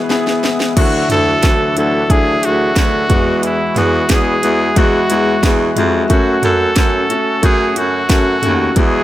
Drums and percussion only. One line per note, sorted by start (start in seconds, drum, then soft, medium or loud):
0.10 snare medium
0.27 snare medium
0.44 snare medium
0.60 snare medium
0.77 kick loud
0.77 closed hi-hat medium
0.77 crash medium
1.10 snare soft
1.10 closed hi-hat medium
1.10 floor tom medium
1.43 kick loud
1.43 snare medium
1.43 closed hi-hat medium
1.77 closed hi-hat medium
2.10 kick medium
2.10 closed hi-hat medium
2.43 closed hi-hat medium
2.76 kick loud
2.76 snare loud
2.76 closed hi-hat loud
3.10 kick medium
3.10 closed hi-hat medium
3.10 floor tom medium
3.43 closed hi-hat medium
3.76 snare soft
3.76 closed hi-hat medium
3.76 floor tom medium
4.09 kick loud
4.09 snare loud
4.09 closed hi-hat medium
4.43 closed hi-hat medium
4.76 kick medium
4.76 closed hi-hat medium
5.10 closed hi-hat medium
5.43 kick loud
5.43 snare loud
5.43 closed hi-hat medium
5.76 closed hi-hat medium
5.76 floor tom soft
6.10 kick loud
6.10 closed hi-hat medium
6.43 snare soft
6.43 closed hi-hat medium
6.43 floor tom medium
6.76 kick loud
6.76 snare loud
6.76 closed hi-hat medium
7.10 closed hi-hat medium
7.43 kick loud
7.43 closed hi-hat medium
7.76 closed hi-hat medium
8.10 kick loud
8.10 snare loud
8.10 closed hi-hat medium
8.43 closed hi-hat medium
8.43 floor tom medium
8.76 kick loud
8.76 closed hi-hat medium